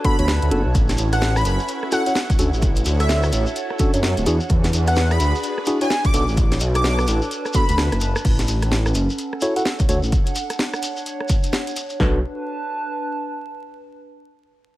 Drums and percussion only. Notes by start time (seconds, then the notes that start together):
0.04 kick, closed hi-hat
0.19 closed hi-hat
0.28 snare
0.42 closed hi-hat
0.51 closed hi-hat
0.75 kick, closed hi-hat, shekere
0.89 snare, closed hi-hat, shekere
0.98 closed hi-hat, shekere
1.13 cross-stick, closed hi-hat, shekere
1.21 snare, shekere
1.36 cross-stick, shekere
1.45 closed hi-hat, shekere
1.59 shekere
1.68 closed hi-hat, shekere
1.83 cross-stick
1.92 closed hi-hat, shekere
2.06 closed hi-hat, shekere
2.15 snare, shekere
2.30 kick, closed hi-hat, shekere
2.39 closed hi-hat, shekere
2.53 shekere
2.62 kick, closed hi-hat, shekere
2.76 closed hi-hat, shekere
2.85 closed hi-hat, shekere
3.00 cross-stick, closed hi-hat, shekere
3.09 snare, shekere
3.23 cross-stick, shekere
3.33 closed hi-hat, shekere
3.46 shekere
3.56 closed hi-hat, shekere
3.70 cross-stick
3.79 kick, closed hi-hat, shekere
3.94 closed hi-hat, shekere
4.03 snare, shekere
4.17 closed hi-hat, shekere
4.26 closed hi-hat, shekere
4.40 shekere
4.49 kick, closed hi-hat, shekere
4.64 snare, closed hi-hat, shekere
4.73 closed hi-hat, shekere
4.87 cross-stick, closed hi-hat, shekere
4.96 snare, shekere
5.10 cross-stick, shekere
5.20 closed hi-hat, shekere
5.35 shekere
5.43 closed hi-hat, shekere
5.58 cross-stick
5.66 closed hi-hat, shekere
5.81 closed hi-hat, shekere
5.90 snare, shekere
6.04 kick, closed hi-hat, shekere
6.14 closed hi-hat, shekere
6.28 shekere
6.37 kick, closed hi-hat, shekere
6.52 snare, closed hi-hat, shekere
6.60 closed hi-hat, shekere
6.75 cross-stick, closed hi-hat, shekere
6.84 snare, shekere
6.99 cross-stick, shekere
7.08 closed hi-hat, shekere
7.22 shekere
7.31 closed hi-hat, shekere
7.45 cross-stick, shekere
7.54 kick, closed hi-hat, shekere
7.68 closed hi-hat, shekere
7.78 cross-stick, snare, shekere
7.92 cross-stick, closed hi-hat, shekere
8.01 closed hi-hat, shekere
8.16 cross-stick, shekere
8.25 kick, closed hi-hat, crash, shekere
8.39 snare, closed hi-hat, shekere
8.48 closed hi-hat, shekere
8.62 cross-stick, closed hi-hat, shekere
8.72 snare, shekere
8.86 cross-stick, shekere
8.95 closed hi-hat, shekere
9.10 shekere
9.18 closed hi-hat, shekere
9.33 cross-stick
9.41 closed hi-hat, shekere
9.56 closed hi-hat, shekere
9.65 snare, shekere
9.79 kick, closed hi-hat, shekere
9.89 closed hi-hat, shekere
10.03 shekere
10.12 kick, closed hi-hat, shekere
10.26 closed hi-hat, shekere
10.36 closed hi-hat, shekere
10.50 cross-stick, closed hi-hat, shekere
10.59 snare, shekere
10.73 cross-stick, shekere
10.83 closed hi-hat, shekere
10.97 shekere
11.06 closed hi-hat, shekere
11.20 cross-stick
11.29 kick, closed hi-hat, shekere
11.43 closed hi-hat, shekere
11.53 snare, shekere
11.67 closed hi-hat, shekere
11.76 closed hi-hat, shekere
11.89 shekere
12.00 kick, snare